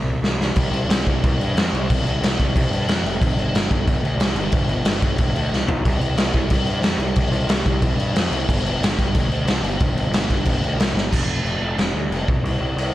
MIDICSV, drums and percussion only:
0, 0, Header, 1, 2, 480
1, 0, Start_track
1, 0, Tempo, 330215
1, 831, Time_signature, 4, 2, 24, 8
1, 18814, End_track
2, 0, Start_track
2, 0, Title_t, "Drums"
2, 350, Note_on_c, 9, 38, 91
2, 495, Note_off_c, 9, 38, 0
2, 597, Note_on_c, 9, 38, 88
2, 742, Note_off_c, 9, 38, 0
2, 810, Note_on_c, 9, 49, 88
2, 824, Note_on_c, 9, 36, 107
2, 956, Note_off_c, 9, 49, 0
2, 970, Note_off_c, 9, 36, 0
2, 1071, Note_on_c, 9, 49, 67
2, 1216, Note_off_c, 9, 49, 0
2, 1311, Note_on_c, 9, 49, 91
2, 1325, Note_on_c, 9, 38, 120
2, 1457, Note_off_c, 9, 49, 0
2, 1470, Note_off_c, 9, 38, 0
2, 1545, Note_on_c, 9, 49, 62
2, 1553, Note_on_c, 9, 36, 88
2, 1691, Note_off_c, 9, 49, 0
2, 1698, Note_off_c, 9, 36, 0
2, 1798, Note_on_c, 9, 49, 87
2, 1800, Note_on_c, 9, 36, 126
2, 1943, Note_off_c, 9, 49, 0
2, 1946, Note_off_c, 9, 36, 0
2, 2050, Note_on_c, 9, 49, 63
2, 2196, Note_off_c, 9, 49, 0
2, 2282, Note_on_c, 9, 49, 79
2, 2295, Note_on_c, 9, 38, 117
2, 2428, Note_off_c, 9, 49, 0
2, 2441, Note_off_c, 9, 38, 0
2, 2538, Note_on_c, 9, 49, 75
2, 2683, Note_off_c, 9, 49, 0
2, 2764, Note_on_c, 9, 36, 114
2, 2765, Note_on_c, 9, 49, 94
2, 2909, Note_off_c, 9, 36, 0
2, 2911, Note_off_c, 9, 49, 0
2, 3004, Note_on_c, 9, 49, 64
2, 3150, Note_off_c, 9, 49, 0
2, 3247, Note_on_c, 9, 49, 93
2, 3260, Note_on_c, 9, 38, 114
2, 3393, Note_off_c, 9, 49, 0
2, 3406, Note_off_c, 9, 38, 0
2, 3482, Note_on_c, 9, 36, 87
2, 3490, Note_on_c, 9, 49, 64
2, 3628, Note_off_c, 9, 36, 0
2, 3635, Note_off_c, 9, 49, 0
2, 3719, Note_on_c, 9, 36, 116
2, 3728, Note_on_c, 9, 49, 92
2, 3864, Note_off_c, 9, 36, 0
2, 3874, Note_off_c, 9, 49, 0
2, 3970, Note_on_c, 9, 49, 72
2, 4115, Note_off_c, 9, 49, 0
2, 4193, Note_on_c, 9, 49, 86
2, 4207, Note_on_c, 9, 38, 103
2, 4339, Note_off_c, 9, 49, 0
2, 4352, Note_off_c, 9, 38, 0
2, 4453, Note_on_c, 9, 49, 71
2, 4599, Note_off_c, 9, 49, 0
2, 4674, Note_on_c, 9, 36, 117
2, 4686, Note_on_c, 9, 49, 85
2, 4820, Note_off_c, 9, 36, 0
2, 4831, Note_off_c, 9, 49, 0
2, 4922, Note_on_c, 9, 49, 69
2, 5067, Note_off_c, 9, 49, 0
2, 5160, Note_on_c, 9, 49, 89
2, 5173, Note_on_c, 9, 38, 119
2, 5305, Note_off_c, 9, 49, 0
2, 5318, Note_off_c, 9, 38, 0
2, 5392, Note_on_c, 9, 36, 91
2, 5399, Note_on_c, 9, 49, 62
2, 5537, Note_off_c, 9, 36, 0
2, 5544, Note_off_c, 9, 49, 0
2, 5634, Note_on_c, 9, 36, 112
2, 5638, Note_on_c, 9, 49, 85
2, 5779, Note_off_c, 9, 36, 0
2, 5784, Note_off_c, 9, 49, 0
2, 5884, Note_on_c, 9, 49, 57
2, 6030, Note_off_c, 9, 49, 0
2, 6105, Note_on_c, 9, 49, 88
2, 6118, Note_on_c, 9, 38, 116
2, 6250, Note_off_c, 9, 49, 0
2, 6263, Note_off_c, 9, 38, 0
2, 6336, Note_on_c, 9, 49, 66
2, 6481, Note_off_c, 9, 49, 0
2, 6569, Note_on_c, 9, 49, 89
2, 6581, Note_on_c, 9, 36, 124
2, 6715, Note_off_c, 9, 49, 0
2, 6726, Note_off_c, 9, 36, 0
2, 6816, Note_on_c, 9, 49, 70
2, 6961, Note_off_c, 9, 49, 0
2, 7051, Note_on_c, 9, 49, 105
2, 7064, Note_on_c, 9, 38, 122
2, 7196, Note_off_c, 9, 49, 0
2, 7209, Note_off_c, 9, 38, 0
2, 7301, Note_on_c, 9, 49, 76
2, 7303, Note_on_c, 9, 36, 94
2, 7446, Note_off_c, 9, 49, 0
2, 7448, Note_off_c, 9, 36, 0
2, 7532, Note_on_c, 9, 49, 82
2, 7542, Note_on_c, 9, 36, 115
2, 7678, Note_off_c, 9, 49, 0
2, 7687, Note_off_c, 9, 36, 0
2, 7788, Note_on_c, 9, 49, 71
2, 7933, Note_off_c, 9, 49, 0
2, 8045, Note_on_c, 9, 38, 67
2, 8190, Note_off_c, 9, 38, 0
2, 8264, Note_on_c, 9, 43, 97
2, 8409, Note_off_c, 9, 43, 0
2, 8509, Note_on_c, 9, 36, 103
2, 8512, Note_on_c, 9, 49, 85
2, 8654, Note_off_c, 9, 36, 0
2, 8657, Note_off_c, 9, 49, 0
2, 8740, Note_on_c, 9, 49, 65
2, 8886, Note_off_c, 9, 49, 0
2, 8977, Note_on_c, 9, 49, 94
2, 8990, Note_on_c, 9, 38, 123
2, 9122, Note_off_c, 9, 49, 0
2, 9135, Note_off_c, 9, 38, 0
2, 9209, Note_on_c, 9, 49, 59
2, 9219, Note_on_c, 9, 36, 82
2, 9354, Note_off_c, 9, 49, 0
2, 9365, Note_off_c, 9, 36, 0
2, 9449, Note_on_c, 9, 49, 92
2, 9462, Note_on_c, 9, 36, 102
2, 9594, Note_off_c, 9, 49, 0
2, 9607, Note_off_c, 9, 36, 0
2, 9691, Note_on_c, 9, 49, 67
2, 9837, Note_off_c, 9, 49, 0
2, 9930, Note_on_c, 9, 49, 72
2, 9943, Note_on_c, 9, 38, 112
2, 10075, Note_off_c, 9, 49, 0
2, 10088, Note_off_c, 9, 38, 0
2, 10172, Note_on_c, 9, 49, 65
2, 10317, Note_off_c, 9, 49, 0
2, 10403, Note_on_c, 9, 49, 91
2, 10416, Note_on_c, 9, 36, 105
2, 10548, Note_off_c, 9, 49, 0
2, 10561, Note_off_c, 9, 36, 0
2, 10655, Note_on_c, 9, 49, 71
2, 10801, Note_off_c, 9, 49, 0
2, 10887, Note_on_c, 9, 49, 92
2, 10900, Note_on_c, 9, 38, 127
2, 11032, Note_off_c, 9, 49, 0
2, 11045, Note_off_c, 9, 38, 0
2, 11134, Note_on_c, 9, 36, 98
2, 11134, Note_on_c, 9, 49, 66
2, 11279, Note_off_c, 9, 36, 0
2, 11279, Note_off_c, 9, 49, 0
2, 11367, Note_on_c, 9, 49, 87
2, 11372, Note_on_c, 9, 36, 119
2, 11512, Note_off_c, 9, 49, 0
2, 11518, Note_off_c, 9, 36, 0
2, 11625, Note_on_c, 9, 49, 70
2, 11770, Note_off_c, 9, 49, 0
2, 11858, Note_on_c, 9, 49, 99
2, 11871, Note_on_c, 9, 38, 98
2, 12003, Note_off_c, 9, 49, 0
2, 12016, Note_off_c, 9, 38, 0
2, 12103, Note_on_c, 9, 49, 73
2, 12248, Note_off_c, 9, 49, 0
2, 12339, Note_on_c, 9, 36, 102
2, 12348, Note_on_c, 9, 49, 94
2, 12484, Note_off_c, 9, 36, 0
2, 12494, Note_off_c, 9, 49, 0
2, 12592, Note_on_c, 9, 49, 71
2, 12737, Note_off_c, 9, 49, 0
2, 12838, Note_on_c, 9, 49, 93
2, 12851, Note_on_c, 9, 38, 126
2, 12983, Note_off_c, 9, 49, 0
2, 12996, Note_off_c, 9, 38, 0
2, 13063, Note_on_c, 9, 36, 84
2, 13070, Note_on_c, 9, 49, 68
2, 13208, Note_off_c, 9, 36, 0
2, 13216, Note_off_c, 9, 49, 0
2, 13295, Note_on_c, 9, 49, 85
2, 13300, Note_on_c, 9, 36, 107
2, 13440, Note_off_c, 9, 49, 0
2, 13446, Note_off_c, 9, 36, 0
2, 13541, Note_on_c, 9, 49, 61
2, 13687, Note_off_c, 9, 49, 0
2, 13773, Note_on_c, 9, 49, 86
2, 13787, Note_on_c, 9, 38, 105
2, 13919, Note_off_c, 9, 49, 0
2, 13932, Note_off_c, 9, 38, 0
2, 14018, Note_on_c, 9, 49, 65
2, 14163, Note_off_c, 9, 49, 0
2, 14249, Note_on_c, 9, 49, 76
2, 14256, Note_on_c, 9, 36, 123
2, 14394, Note_off_c, 9, 49, 0
2, 14402, Note_off_c, 9, 36, 0
2, 14500, Note_on_c, 9, 49, 69
2, 14645, Note_off_c, 9, 49, 0
2, 14732, Note_on_c, 9, 49, 93
2, 14745, Note_on_c, 9, 38, 120
2, 14877, Note_off_c, 9, 49, 0
2, 14890, Note_off_c, 9, 38, 0
2, 14976, Note_on_c, 9, 36, 83
2, 14977, Note_on_c, 9, 49, 69
2, 15121, Note_off_c, 9, 36, 0
2, 15123, Note_off_c, 9, 49, 0
2, 15196, Note_on_c, 9, 49, 91
2, 15211, Note_on_c, 9, 36, 99
2, 15342, Note_off_c, 9, 49, 0
2, 15356, Note_off_c, 9, 36, 0
2, 15461, Note_on_c, 9, 49, 66
2, 15607, Note_off_c, 9, 49, 0
2, 15695, Note_on_c, 9, 49, 97
2, 15708, Note_on_c, 9, 38, 110
2, 15841, Note_off_c, 9, 49, 0
2, 15854, Note_off_c, 9, 38, 0
2, 15949, Note_on_c, 9, 38, 74
2, 16095, Note_off_c, 9, 38, 0
2, 16173, Note_on_c, 9, 36, 106
2, 16179, Note_on_c, 9, 49, 53
2, 16179, Note_on_c, 9, 57, 113
2, 16319, Note_off_c, 9, 36, 0
2, 16324, Note_off_c, 9, 49, 0
2, 16324, Note_off_c, 9, 57, 0
2, 16661, Note_on_c, 9, 49, 53
2, 16807, Note_off_c, 9, 49, 0
2, 17128, Note_on_c, 9, 49, 51
2, 17141, Note_on_c, 9, 38, 93
2, 17273, Note_off_c, 9, 49, 0
2, 17286, Note_off_c, 9, 38, 0
2, 17620, Note_on_c, 9, 49, 55
2, 17766, Note_off_c, 9, 49, 0
2, 17856, Note_on_c, 9, 36, 100
2, 18001, Note_off_c, 9, 36, 0
2, 18104, Note_on_c, 9, 49, 62
2, 18249, Note_off_c, 9, 49, 0
2, 18582, Note_on_c, 9, 49, 65
2, 18727, Note_off_c, 9, 49, 0
2, 18814, End_track
0, 0, End_of_file